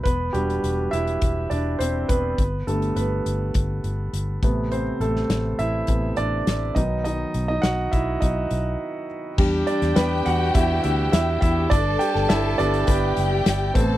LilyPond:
<<
  \new Staff \with { instrumentName = "Violin section" } { \time 4/4 \key e \minor \tempo 4 = 103 r1 | r1 | r1 | r1 |
<g' g''>1 | <a' a''>2 <g' g''>4. <a' a''>8 | }
  \new Staff \with { instrumentName = "Grand piano" } { \time 4/4 \key e \minor <b b'>8 g'4 <e' e''>4 <d' d''>8 <c' c''>8 <b b'>8~ | <b b'>8 <a a'>8 <b b'>2~ <b b'>8 r8 | <c' c''>8 <a a'>4 <e' e''>4 <d' d''>4 <dis' dis''>8 | <dis' dis''>8. <dis' dis''>16 <fis' fis''>8 <e' e''>8 <dis' dis''>4. r8 |
r8 <d' d''>8 <b b'>8 <fis' fis''>8 <e' e''>8 <e' e''>8 <e' e''>8 <e' e''>8 | <d' d''>8 <g' g''>8 <e' e''>8 <d' d''>8 <b b'>4. r8 | }
  \new Staff \with { instrumentName = "Grand piano" } { \time 4/4 \key e \minor r8 <g d' fis'>2.~ <g d' fis'>8 | r8 <d g b>2. <c a b>8 | r2 <c a b>8 r4 <dis fis b>8 | r1 |
<g d' g'>1 | r4. <g b>8 r4. <a b c'>8 | }
  \new Staff \with { instrumentName = "Tonewheel organ" } { \time 4/4 \key e \minor r1 | r1 | r1 | r1 |
d'1~ | d'2.~ d'8 b'8 | }
  \new Staff \with { instrumentName = "Tonewheel organ" } { \clef bass \time 4/4 \key e \minor r1 | r1 | r1 | r1 |
<e g'>1 | <g b'>2.~ <g b'>8 <c a>8 | }
  \new Staff \with { instrumentName = "Fingered electric bass" } { \clef bass \time 4/4 \key e \minor e,,8 e,,8 e,,8 e,,8 e,,8 e,,8 e,,8 e,,8 | g,,8 g,,8 g,,8 g,,8 g,,8 g,,8 g,,8 a,,8~ | a,,8 a,,8 a,,8 a,,8 a,,8 a,,8 a,,8 b,,8~ | b,,8 b,,8 b,,8 b,,8 b,,8 b,,8 r4 |
e,8 r16 e,16 e,8 e,8 e,8 d,8 e,8 e,8 | g,,8 r16 g,,16 g,,8 g,,8 g,,8 fis,,8 g,,8 a,,8 | }
  \new DrumStaff \with { instrumentName = "Drums" } \drummode { \time 4/4 <hh bd>8 hh16 hh16 hh8 hh16 hh16 <hh bd>8 hh8 hh8 <hh bd>8 | <hh bd>8 hh16 hh16 hh8 hh8 <hh bd>8 hh8 hh8 <hh bd>8 | hh8 hh16 sn16 <hh sn>8 hh8 <hh bd>8 hh8 <hh sn>8 <hh bd>8 | hh8 hh8 <hh sn>8 <hh bd>8 <hh bd>8 hh8 r4 |
<cymc bd>8 hh16 <hh sn>16 <hh sn>8 hh8 <hh bd>8 hh8 <hh sn>8 <hh bd>8 | <hh bd>8 hh16 sn16 <hh sn>8 hh16 hh16 <hh bd>8 hh8 <hh sn>8 <hh bd>8 | }
>>